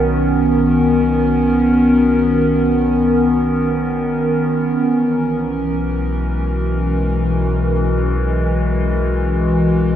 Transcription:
0, 0, Header, 1, 3, 480
1, 0, Start_track
1, 0, Key_signature, 5, "major"
1, 0, Tempo, 500000
1, 9560, End_track
2, 0, Start_track
2, 0, Title_t, "Ambient pad"
2, 0, Program_c, 0, 92
2, 0, Note_on_c, 0, 51, 87
2, 0, Note_on_c, 0, 59, 81
2, 0, Note_on_c, 0, 61, 69
2, 0, Note_on_c, 0, 66, 68
2, 0, Note_on_c, 0, 70, 78
2, 4631, Note_off_c, 0, 66, 0
2, 4635, Note_on_c, 0, 52, 88
2, 4637, Note_off_c, 0, 51, 0
2, 4638, Note_off_c, 0, 59, 0
2, 5242, Note_on_c, 0, 56, 69
2, 5455, Note_on_c, 0, 66, 75
2, 9560, Note_off_c, 0, 52, 0
2, 9560, Note_off_c, 0, 56, 0
2, 9560, Note_off_c, 0, 61, 0
2, 9560, Note_off_c, 0, 66, 0
2, 9560, Note_off_c, 0, 70, 0
2, 9560, End_track
3, 0, Start_track
3, 0, Title_t, "Analog synth bass"
3, 0, Program_c, 1, 38
3, 0, Note_on_c, 1, 35, 81
3, 4583, Note_off_c, 1, 35, 0
3, 4625, Note_on_c, 1, 35, 85
3, 9560, Note_off_c, 1, 35, 0
3, 9560, End_track
0, 0, End_of_file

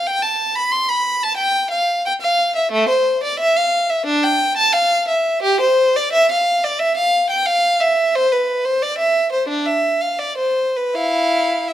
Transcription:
0, 0, Header, 1, 2, 480
1, 0, Start_track
1, 0, Tempo, 665188
1, 58, Time_signature, 4, 2, 24, 8
1, 3419, Tempo, 696864
1, 4379, Tempo, 673401
1, 6779, Tempo, 700935
1, 7259, Tempo, 748130
1, 8241, End_track
2, 0, Start_track
2, 0, Title_t, "Violin"
2, 0, Program_c, 0, 40
2, 47, Note_on_c, 0, 79, 87
2, 160, Note_on_c, 0, 81, 72
2, 172, Note_off_c, 0, 79, 0
2, 399, Note_on_c, 0, 83, 78
2, 406, Note_off_c, 0, 81, 0
2, 519, Note_on_c, 0, 84, 80
2, 525, Note_off_c, 0, 83, 0
2, 638, Note_on_c, 0, 83, 73
2, 645, Note_off_c, 0, 84, 0
2, 884, Note_off_c, 0, 83, 0
2, 887, Note_on_c, 0, 81, 78
2, 987, Note_on_c, 0, 79, 82
2, 1009, Note_off_c, 0, 81, 0
2, 1229, Note_on_c, 0, 77, 75
2, 1235, Note_off_c, 0, 79, 0
2, 1475, Note_off_c, 0, 77, 0
2, 1484, Note_on_c, 0, 79, 91
2, 1534, Note_off_c, 0, 79, 0
2, 1597, Note_on_c, 0, 77, 89
2, 1839, Note_off_c, 0, 77, 0
2, 1845, Note_on_c, 0, 76, 73
2, 1961, Note_on_c, 0, 57, 102
2, 1966, Note_off_c, 0, 76, 0
2, 2084, Note_on_c, 0, 72, 72
2, 2085, Note_off_c, 0, 57, 0
2, 2325, Note_off_c, 0, 72, 0
2, 2332, Note_on_c, 0, 74, 76
2, 2448, Note_on_c, 0, 76, 94
2, 2452, Note_off_c, 0, 74, 0
2, 2570, Note_on_c, 0, 77, 91
2, 2571, Note_off_c, 0, 76, 0
2, 2812, Note_on_c, 0, 76, 81
2, 2816, Note_off_c, 0, 77, 0
2, 2929, Note_on_c, 0, 62, 95
2, 2936, Note_off_c, 0, 76, 0
2, 3052, Note_off_c, 0, 62, 0
2, 3054, Note_on_c, 0, 79, 89
2, 3296, Note_off_c, 0, 79, 0
2, 3296, Note_on_c, 0, 81, 89
2, 3413, Note_on_c, 0, 77, 96
2, 3415, Note_off_c, 0, 81, 0
2, 3651, Note_on_c, 0, 76, 76
2, 3653, Note_off_c, 0, 77, 0
2, 3892, Note_on_c, 0, 67, 100
2, 3895, Note_off_c, 0, 76, 0
2, 4016, Note_on_c, 0, 72, 84
2, 4018, Note_off_c, 0, 67, 0
2, 4253, Note_off_c, 0, 72, 0
2, 4262, Note_on_c, 0, 74, 85
2, 4374, Note_on_c, 0, 76, 104
2, 4379, Note_off_c, 0, 74, 0
2, 4495, Note_off_c, 0, 76, 0
2, 4509, Note_on_c, 0, 77, 84
2, 4741, Note_off_c, 0, 77, 0
2, 4741, Note_on_c, 0, 74, 83
2, 4848, Note_on_c, 0, 76, 92
2, 4861, Note_off_c, 0, 74, 0
2, 4974, Note_off_c, 0, 76, 0
2, 4976, Note_on_c, 0, 77, 86
2, 5210, Note_on_c, 0, 79, 87
2, 5211, Note_off_c, 0, 77, 0
2, 5325, Note_on_c, 0, 77, 95
2, 5331, Note_off_c, 0, 79, 0
2, 5567, Note_on_c, 0, 76, 86
2, 5570, Note_off_c, 0, 77, 0
2, 5812, Note_off_c, 0, 76, 0
2, 5819, Note_on_c, 0, 72, 95
2, 5936, Note_on_c, 0, 71, 77
2, 5938, Note_off_c, 0, 72, 0
2, 6171, Note_on_c, 0, 72, 78
2, 6177, Note_off_c, 0, 71, 0
2, 6294, Note_off_c, 0, 72, 0
2, 6295, Note_on_c, 0, 74, 79
2, 6410, Note_on_c, 0, 76, 81
2, 6416, Note_off_c, 0, 74, 0
2, 6649, Note_off_c, 0, 76, 0
2, 6652, Note_on_c, 0, 72, 71
2, 6767, Note_on_c, 0, 62, 78
2, 6773, Note_off_c, 0, 72, 0
2, 6886, Note_on_c, 0, 76, 75
2, 6888, Note_off_c, 0, 62, 0
2, 7127, Note_on_c, 0, 77, 69
2, 7131, Note_off_c, 0, 76, 0
2, 7250, Note_on_c, 0, 74, 77
2, 7255, Note_off_c, 0, 77, 0
2, 7372, Note_on_c, 0, 72, 73
2, 7373, Note_off_c, 0, 74, 0
2, 7615, Note_off_c, 0, 72, 0
2, 7621, Note_on_c, 0, 71, 64
2, 7738, Note_on_c, 0, 64, 71
2, 7739, Note_on_c, 0, 77, 76
2, 7745, Note_off_c, 0, 71, 0
2, 8191, Note_off_c, 0, 64, 0
2, 8210, Note_on_c, 0, 76, 57
2, 8217, Note_off_c, 0, 77, 0
2, 8241, Note_off_c, 0, 76, 0
2, 8241, End_track
0, 0, End_of_file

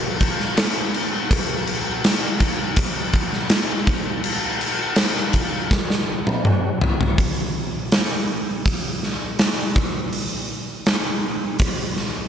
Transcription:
0, 0, Header, 1, 2, 480
1, 0, Start_track
1, 0, Tempo, 735294
1, 851, Time_signature, 4, 2, 24, 8
1, 8017, End_track
2, 0, Start_track
2, 0, Title_t, "Drums"
2, 133, Note_on_c, 9, 49, 66
2, 136, Note_on_c, 9, 36, 86
2, 199, Note_off_c, 9, 49, 0
2, 201, Note_off_c, 9, 36, 0
2, 262, Note_on_c, 9, 38, 37
2, 327, Note_off_c, 9, 38, 0
2, 373, Note_on_c, 9, 49, 88
2, 377, Note_on_c, 9, 38, 127
2, 438, Note_off_c, 9, 49, 0
2, 442, Note_off_c, 9, 38, 0
2, 615, Note_on_c, 9, 49, 63
2, 681, Note_off_c, 9, 49, 0
2, 854, Note_on_c, 9, 36, 118
2, 856, Note_on_c, 9, 49, 92
2, 919, Note_off_c, 9, 36, 0
2, 922, Note_off_c, 9, 49, 0
2, 1092, Note_on_c, 9, 49, 68
2, 1158, Note_off_c, 9, 49, 0
2, 1333, Note_on_c, 9, 49, 82
2, 1337, Note_on_c, 9, 38, 109
2, 1398, Note_off_c, 9, 49, 0
2, 1402, Note_off_c, 9, 38, 0
2, 1568, Note_on_c, 9, 49, 65
2, 1570, Note_on_c, 9, 36, 83
2, 1633, Note_off_c, 9, 49, 0
2, 1635, Note_off_c, 9, 36, 0
2, 1803, Note_on_c, 9, 49, 84
2, 1807, Note_on_c, 9, 36, 112
2, 1869, Note_off_c, 9, 49, 0
2, 1873, Note_off_c, 9, 36, 0
2, 2045, Note_on_c, 9, 49, 60
2, 2047, Note_on_c, 9, 36, 89
2, 2110, Note_off_c, 9, 49, 0
2, 2112, Note_off_c, 9, 36, 0
2, 2172, Note_on_c, 9, 38, 36
2, 2238, Note_off_c, 9, 38, 0
2, 2281, Note_on_c, 9, 49, 86
2, 2285, Note_on_c, 9, 38, 127
2, 2346, Note_off_c, 9, 49, 0
2, 2350, Note_off_c, 9, 38, 0
2, 2526, Note_on_c, 9, 49, 57
2, 2528, Note_on_c, 9, 36, 99
2, 2591, Note_off_c, 9, 49, 0
2, 2593, Note_off_c, 9, 36, 0
2, 2766, Note_on_c, 9, 49, 84
2, 2831, Note_off_c, 9, 49, 0
2, 3008, Note_on_c, 9, 49, 66
2, 3074, Note_off_c, 9, 49, 0
2, 3237, Note_on_c, 9, 49, 77
2, 3241, Note_on_c, 9, 38, 98
2, 3302, Note_off_c, 9, 49, 0
2, 3306, Note_off_c, 9, 38, 0
2, 3374, Note_on_c, 9, 38, 33
2, 3439, Note_off_c, 9, 38, 0
2, 3480, Note_on_c, 9, 49, 65
2, 3486, Note_on_c, 9, 36, 83
2, 3545, Note_off_c, 9, 49, 0
2, 3551, Note_off_c, 9, 36, 0
2, 3727, Note_on_c, 9, 36, 114
2, 3729, Note_on_c, 9, 38, 68
2, 3793, Note_off_c, 9, 36, 0
2, 3795, Note_off_c, 9, 38, 0
2, 3854, Note_on_c, 9, 38, 62
2, 3919, Note_off_c, 9, 38, 0
2, 4092, Note_on_c, 9, 48, 76
2, 4157, Note_off_c, 9, 48, 0
2, 4210, Note_on_c, 9, 47, 99
2, 4275, Note_off_c, 9, 47, 0
2, 4449, Note_on_c, 9, 43, 107
2, 4514, Note_off_c, 9, 43, 0
2, 4573, Note_on_c, 9, 43, 107
2, 4639, Note_off_c, 9, 43, 0
2, 4689, Note_on_c, 9, 36, 103
2, 4690, Note_on_c, 9, 46, 57
2, 4754, Note_off_c, 9, 36, 0
2, 4756, Note_off_c, 9, 46, 0
2, 5168, Note_on_c, 9, 46, 59
2, 5172, Note_on_c, 9, 38, 108
2, 5233, Note_off_c, 9, 46, 0
2, 5237, Note_off_c, 9, 38, 0
2, 5650, Note_on_c, 9, 46, 56
2, 5651, Note_on_c, 9, 36, 99
2, 5715, Note_off_c, 9, 46, 0
2, 5716, Note_off_c, 9, 36, 0
2, 5896, Note_on_c, 9, 38, 34
2, 5961, Note_off_c, 9, 38, 0
2, 6129, Note_on_c, 9, 46, 62
2, 6133, Note_on_c, 9, 38, 114
2, 6194, Note_off_c, 9, 46, 0
2, 6198, Note_off_c, 9, 38, 0
2, 6371, Note_on_c, 9, 36, 94
2, 6436, Note_off_c, 9, 36, 0
2, 6610, Note_on_c, 9, 46, 58
2, 6676, Note_off_c, 9, 46, 0
2, 7090, Note_on_c, 9, 46, 51
2, 7094, Note_on_c, 9, 38, 105
2, 7155, Note_off_c, 9, 46, 0
2, 7159, Note_off_c, 9, 38, 0
2, 7564, Note_on_c, 9, 46, 62
2, 7571, Note_on_c, 9, 36, 108
2, 7629, Note_off_c, 9, 46, 0
2, 7636, Note_off_c, 9, 36, 0
2, 7810, Note_on_c, 9, 38, 34
2, 7875, Note_off_c, 9, 38, 0
2, 8017, End_track
0, 0, End_of_file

